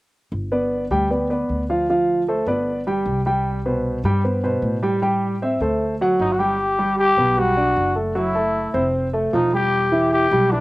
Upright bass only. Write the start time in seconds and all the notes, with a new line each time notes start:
0.32 G1
0.91 D2
1.49 D2
2.46 G1
3.06 C2
4.04 G2
4.62 A2
5.60 D2
6.19 G1
7.17 B1
7.76 F#1
8.74 F1
9.33 E1
10.31 B1